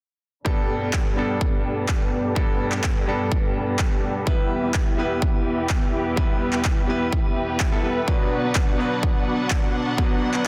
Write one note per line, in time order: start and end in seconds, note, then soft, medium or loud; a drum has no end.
0.45 1.14 G2 medium
0.45 1.14 G3 medium
0.45 0.79 B3 medium
0.45 1.14 B3 medium
0.45 1.15 D4 medium
0.45 0.79 G4 medium
0.45 0.79 A4 medium
0.45 1.15 A4 loud
0.45 0.79 D5 medium
0.45 0.79 G5 loud
0.45 kick loud
0.81 1.14 B3 medium
0.81 1.14 G4 medium
0.81 1.14 A4 medium
0.81 1.14 D5 medium
0.81 1.14 G5 loud
0.93 kick loud
0.93 clap loud
1.16 2.33 G2 medium
1.16 2.33 G3 medium
1.16 1.62 B3 medium
1.16 2.33 B3 medium
1.16 2.34 D4 medium
1.16 1.62 G4 medium
1.16 1.62 A4 medium
1.16 2.34 A4 medium
1.16 1.62 D5 medium
1.16 1.62 G5 loud
1.41 kick loud
1.65 1.98 B3 medium
1.65 1.98 G4 medium
1.65 1.98 A4 medium
1.65 1.98 D5 medium
1.65 1.98 G5 medium
1.89 kick loud
1.89 clap loud
2.01 2.33 B3 medium
2.01 2.34 G4 medium
2.01 2.34 A4 medium
2.01 2.34 D5 medium
2.01 2.34 G5 medium
2.35 3.04 G2 medium
2.35 3.05 G3 medium
2.35 3.05 B3 medium
2.35 3.05 D4 medium
2.35 3.06 A4 loud
2.35 kick loud
2.72 3.05 B3 loud
2.72 3.05 G4 medium
2.72 3.05 A4 medium
2.72 3.05 D5 medium
2.72 3.05 G5 loud
2.72 clap soft
2.84 kick loud
2.84 clap loud
3.06 4.23 G2 medium
3.06 4.24 G3 medium
3.06 4.24 B3 medium
3.06 3.53 B3 medium
3.06 4.24 D4 medium
3.06 3.53 G4 medium
3.06 3.53 A4 medium
3.06 4.24 A4 medium
3.06 3.53 D5 medium
3.06 3.53 G5 loud
3.32 kick loud
3.55 3.88 B3 medium
3.55 3.88 G4 medium
3.55 3.88 A4 medium
3.55 3.88 D5 medium
3.55 3.88 G5 medium
3.79 kick loud
3.79 clap loud
3.91 4.24 B3 medium
3.91 4.24 G4 medium
3.91 4.24 A4 medium
3.91 4.24 D5 medium
3.91 4.24 G5 medium
4.26 8.04 E2 medium
4.26 8.04 E3 medium
4.26 4.95 G3 medium
4.26 4.95 B3 medium
4.26 8.04 B3 medium
4.26 4.60 E4 medium
4.26 4.96 E4 medium
4.26 8.04 G4 medium
4.26 10.47 B4 medium
4.26 4.96 B4 medium
4.26 4.60 E5 medium
4.26 kick loud
4.63 4.95 B3 loud
4.63 4.95 E4 medium
4.63 4.95 G4 medium
4.63 4.95 E5 medium
4.63 4.95 G5 loud
4.74 kick loud
4.74 clap loud
4.97 6.14 G3 medium
4.97 6.14 B3 medium
4.97 5.43 B3 medium
4.97 5.43 E4 medium
4.97 6.15 E4 medium
4.97 5.43 G4 medium
4.97 6.15 B4 medium
4.97 5.43 E5 medium
4.97 5.43 G5 loud
5.22 kick loud
5.46 5.79 B3 medium
5.46 5.79 E4 medium
5.46 5.79 G4 medium
5.46 5.79 E5 medium
5.46 5.79 G5 medium
5.69 kick loud
5.69 clap loud
5.82 6.14 B3 medium
5.82 6.14 E4 medium
5.82 6.14 G4 medium
5.82 6.14 E5 medium
5.82 6.14 G5 medium
6.16 6.85 G3 medium
6.16 6.86 B3 medium
6.16 6.86 E4 medium
6.16 6.86 B4 loud
6.16 kick loud
6.53 6.86 B3 loud
6.53 6.86 E4 medium
6.53 6.86 G4 medium
6.53 6.86 E5 medium
6.53 6.86 G5 loud
6.53 clap soft
6.65 kick loud
6.65 clap loud
6.87 7.69 G3 medium
6.87 7.69 B3 medium
6.87 7.33 B3 medium
6.87 7.33 E4 medium
6.87 7.70 E4 medium
6.87 7.33 G4 medium
6.87 7.70 B4 medium
6.87 7.33 E5 medium
6.87 7.33 G5 loud
7.12 kick loud
7.36 7.69 B3 medium
7.36 7.69 E4 medium
7.36 7.69 G4 medium
7.36 7.69 E5 medium
7.36 7.69 G5 medium
7.60 kick loud
7.60 clap loud
7.71 7.81 G3 medium
7.71 7.81 B3 medium
7.71 8.05 B3 medium
7.71 8.05 E4 medium
7.71 7.81 E4 medium
7.71 8.05 G4 medium
7.71 7.81 A4 medium
7.71 8.05 E5 medium
7.71 8.05 G5 medium
7.83 7.93 G3 medium
7.83 7.93 B3 medium
7.83 7.93 E4 medium
7.83 7.94 B4 medium
8.07 8.76 B2 medium
8.07 10.47 B2 medium
8.07 8.76 F#3 medium
8.07 10.47 F#3 medium
8.07 8.76 B3 medium
8.07 8.41 D4 medium
8.07 10.47 D4 medium
8.07 8.77 D4 medium
8.07 8.77 B4 loud
8.07 8.41 D5 medium
8.07 10.47 F#5 medium
8.07 kick loud
8.43 8.76 B3 loud
8.43 8.76 D4 medium
8.43 8.76 F#4 medium
8.43 8.76 D5 medium
8.43 8.76 F#5 loud
8.55 kick loud
8.55 clap loud
8.78 9.95 B2 medium
8.78 9.95 F#3 medium
8.78 9.95 B3 medium
8.78 9.24 B3 medium
8.78 9.24 D4 medium
8.78 9.96 D4 medium
8.78 9.24 F#4 medium
8.78 9.96 B4 loud
8.78 9.24 D5 medium
8.78 9.24 F#5 medium
9.03 kick loud
9.27 9.60 B3 medium
9.27 9.60 D4 medium
9.27 9.60 F#4 medium
9.27 9.60 D5 medium
9.27 9.60 F#5 medium
9.50 kick loud
9.50 clap loud
9.62 9.95 B3 medium
9.62 9.95 D4 medium
9.62 9.95 F#4 medium
9.62 9.95 D5 medium
9.62 9.95 F#5 medium
9.97 10.47 B2 medium
9.97 10.47 F#3 medium
9.97 10.47 B3 medium
9.97 10.31 B3 medium
9.97 10.47 D4 medium
9.97 10.31 F#4 medium
9.97 10.47 B4 medium
9.97 10.31 F#5 loud
9.97 kick loud
10.34 10.47 B3 loud
10.34 10.47 D4 medium
10.34 10.47 F#4 medium
10.34 10.47 D5 medium
10.34 10.47 F#5 loud
10.34 clap soft